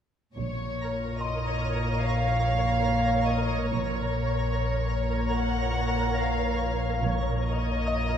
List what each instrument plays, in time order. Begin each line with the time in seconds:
0.37 synth drone A#1, double bass section A#1, cello section A#2, synth texture A#4 C#5 A#5, violin section C#5
1.21 violin section D#5, music box C6
2.02 violin section F5
3.28 violin section D#5
3.68 synth drone A#1, double bass section A#1, cello section A#2, synth texture A#4 C#5 A#5, violin section C#5
5.36 violin section F#5
6.20 violin section F5
7.02 double bass section A#1, synth drone A#1, cello section A#2, synth texture A#4 D#5 A#5
7.44 violin section D#5
7.87 music box D#5 D#6